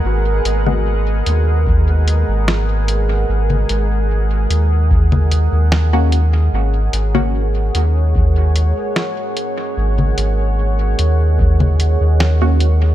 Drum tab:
HH |--x---x---x---x-|--x---x---x---x-|--x---x---x---x-|--x---x---x---x-|
SD |------------o---|------------o---|------------o---|------------o---|
CG |---O------------|-O-------O------|---O------------|-O-------O------|
BD |--------o-------|--------o-------|--------o-------|--------o-------|